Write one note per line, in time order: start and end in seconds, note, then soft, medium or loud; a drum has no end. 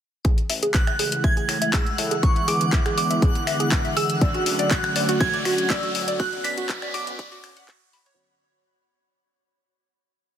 0.25 0.43 A1 loud
0.25 2.21 C#3 medium
0.25 4.18 E3 medium
0.25 4.18 G#3 medium
0.25 2.21 A3 medium
0.25 2.21 E4 medium
0.25 0.33 G#4 medium
0.25 8.19 F#5 medium
0.25 8.19 F#6 medium
0.25 kick loud
0.25 closed hi-hat medium
0.25 riser medium
0.38 closed hi-hat soft
0.50 0.67 A1 medium
0.50 0.62 E5 medium
0.50 open hi-hat loud
0.63 0.70 G#4 medium
0.63 closed hi-hat medium
0.74 0.84 A1 medium
0.74 1.20 F#6 loud
0.74 1.21 F#6 medium
0.74 kick loud
0.74 clap loud
0.74 closed hi-hat medium
0.87 0.99 E5 medium
0.87 finger snap medium
0.87 closed hi-hat soft
0.99 1.17 A1 medium
0.99 1.07 G#4 medium
0.99 open hi-hat loud
1.12 closed hi-hat medium
1.24 1.42 A1 medium
1.24 1.36 E5 medium
1.24 1.70 G#6 loud
1.24 kick loud
1.24 closed hi-hat medium
1.37 1.44 G#4 medium
1.37 closed hi-hat soft
1.49 1.58 A2 medium
1.49 finger snap medium
1.49 open hi-hat loud
1.62 1.73 E5 medium
1.62 closed hi-hat medium
1.73 1.83 A1 loud
1.73 1.82 G#4 medium
1.73 2.25 E6 loud
1.73 kick loud
1.73 clap loud
1.73 closed hi-hat medium
1.87 closed hi-hat soft
1.98 2.16 A2 medium
1.98 2.11 E5 medium
1.98 open hi-hat loud
2.11 2.19 G#4 medium
2.11 closed hi-hat medium
2.23 2.41 E2 loud
2.23 8.14 D3 medium
2.23 4.20 B3 medium
2.23 4.20 E4 medium
2.23 2.49 C#6 loud
2.23 2.49 C#6 medium
2.23 kick loud
2.23 closed hi-hat medium
2.36 2.47 E5 medium
2.36 closed hi-hat soft
2.48 2.66 E2 medium
2.48 2.56 G#4 medium
2.48 2.96 D6 medium
2.48 open hi-hat loud
2.61 closed hi-hat soft
2.73 2.82 E2 medium
2.73 2.85 E5 medium
2.73 kick loud
2.73 clap loud
2.73 closed hi-hat medium
2.86 2.93 G#4 medium
2.86 finger snap medium
2.86 closed hi-hat soft
2.97 3.15 E2 medium
2.97 3.68 D6 medium
2.97 open hi-hat loud
3.10 3.22 E5 medium
3.10 closed hi-hat medium
3.22 3.40 E2 medium
3.22 3.30 G#4 medium
3.22 kick loud
3.22 closed hi-hat medium
3.35 closed hi-hat soft
3.47 3.56 E1 medium
3.47 3.59 E5 medium
3.47 finger snap medium
3.47 open hi-hat loud
3.60 3.68 G#4 medium
3.60 closed hi-hat medium
3.72 3.81 E2 loud
3.72 kick loud
3.72 clap loud
3.72 closed hi-hat medium
3.85 3.96 E5 medium
3.85 closed hi-hat soft
3.97 4.14 E1 medium
3.97 4.05 G#4 medium
3.97 4.73 E6 medium
3.97 open hi-hat loud
4.10 closed hi-hat medium
4.21 4.39 D2 loud
4.21 8.14 F#3 medium
4.21 6.18 A3 medium
4.21 6.18 C#4 medium
4.21 8.14 F#4 medium
4.21 4.34 D5 medium
4.21 kick loud
4.21 closed hi-hat medium
4.34 4.42 F#4 medium
4.34 closed hi-hat soft
4.46 4.64 D2 medium
4.46 open hi-hat loud
4.59 4.70 D5 medium
4.59 closed hi-hat soft
4.71 4.80 D2 medium
4.71 5.22 F#6 medium
4.71 5.22 F#6 loud
4.71 kick loud
4.71 clap loud
4.71 closed hi-hat soft
4.84 finger snap medium
4.84 closed hi-hat soft
4.96 5.14 D2 medium
4.96 5.08 D5 medium
4.96 open hi-hat loud
5.09 5.16 F#4 medium
5.09 closed hi-hat medium
5.20 5.38 D2 medium
5.20 5.72 G#6 loud
5.20 kick loud
5.20 closed hi-hat soft
5.33 5.45 D5 medium
5.33 closed hi-hat soft
5.45 5.55 D1 medium
5.45 5.54 F#4 medium
5.45 finger snap medium
5.45 open hi-hat loud
5.58 closed hi-hat medium
5.70 5.79 D2 loud
5.70 5.83 D5 medium
5.70 6.16 E6 loud
5.70 6.16 E6 medium
5.70 kick loud
5.70 clap loud
5.70 closed hi-hat medium
5.83 5.91 F#4 medium
5.83 closed hi-hat soft
5.95 6.13 D1 medium
5.95 open hi-hat loud
6.08 6.19 D5 medium
6.08 closed hi-hat medium
6.19 6.38 B1 loud
6.19 8.16 B3 medium
6.19 8.16 C#4 medium
6.19 6.28 F#4 medium
6.19 6.43 F#6 loud
6.19 kick loud
6.19 closed hi-hat medium
6.33 closed hi-hat soft
6.44 6.62 B1 medium
6.44 6.57 D5 medium
6.44 6.95 B6 loud
6.44 6.96 B6 loud
6.44 open hi-hat loud
6.58 6.65 F#4 medium
6.58 closed hi-hat medium
6.69 6.79 B1 medium
6.69 kick loud
6.69 clap loud
6.69 closed hi-hat soft
6.82 6.94 D5 medium
6.82 finger snap medium
6.82 closed hi-hat soft
6.94 7.12 B1 medium
6.94 7.02 F#4 medium
6.94 7.64 D6 medium
6.94 open hi-hat loud
7.07 closed hi-hat medium
7.19 7.37 B1 medium
7.19 7.31 D5 medium
7.19 kick loud
7.19 closed hi-hat medium
7.32 7.39 F#4 medium
7.32 closed hi-hat soft
7.44 finger snap medium
7.44 open hi-hat loud
7.57 7.64 F#5 medium
7.57 closed hi-hat medium
7.68 7.78 B1 loud
7.68 7.81 F#4 loud
7.68 kick loud
7.68 clap loud
7.68 closed hi-hat medium
7.81 closed hi-hat soft
7.93 8.02 B5 medium
7.93 open hi-hat loud
8.06 8.11 C#5 loud
8.06 closed hi-hat medium